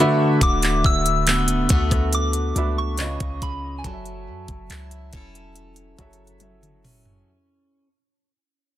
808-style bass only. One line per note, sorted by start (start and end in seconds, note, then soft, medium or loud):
0.41 0.82 D1 loud
0.85 1.67 D1 loud
1.70 2.52 D2 loud
2.56 3.17 C#2 loud
3.20 3.82 C#2 loud
3.84 4.29 F#1 loud
4.28 4.48 F#2 loud
4.48 4.69 F#1 loud
4.70 5.11 C#2 loud
5.13 5.95 E1 loud
5.99 7.23 F#1 medium